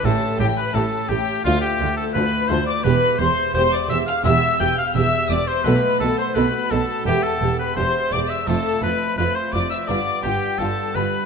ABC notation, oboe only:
X:1
M:4/4
L:1/16
Q:1/4=85
K:Ephr
V:1 name="Oboe"
A2 G B A2 G2 F G2 A B2 c d | B2 c2 c d e f e2 g f e2 d c | B2 A c B2 A2 G A2 B c2 d e | A2 B2 B c d e d2 G2 A2 B2 |]